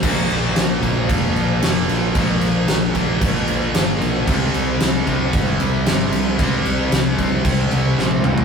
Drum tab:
CC |x-x-x-x-x-x-x-x-|x-x-x-x-x-x-x-x-|x-x-x-x-x-x-x-x-|x-x-x-x-x-x-----|
SD |----o-------o-o-|----o-------o-o-|----o-------o-o-|----o-------o---|
T1 |----------------|----------------|----------------|-------------o--|
T2 |----------------|----------------|----------------|--------------o-|
FT |----------------|----------------|----------------|---------------o|
BD |o-----o-o-------|o-----o-o-------|o-----o-o-------|o-----o-o-------|